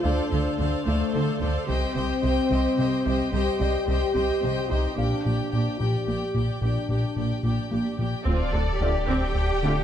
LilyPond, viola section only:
\new Staff \with { instrumentName = "Viola section" } { \time 6/8 \key d \phrygian \tempo 4. = 73 <a' c''>8 <a' c''>8 <a' c''>8 <a' c''>8 <a' c''>8 <a' c''>8 | <g' c''>8 <g' c''>8 <g' c''>8 <g' c''>8 <g' c''>8 <g' c''>8 | <g' c''>8 <g' c''>8 <g' c''>8 <g' c''>8 <g' c''>8 <g' c''>8 | g'8 g'8 g'8 g'8 g'8 g'8 |
g'8 g'8 g'8 g'8 g'8 g'8 | c'8 <c' d'>8 <c' f'>8 c'8 r8 <c' f'>8 | }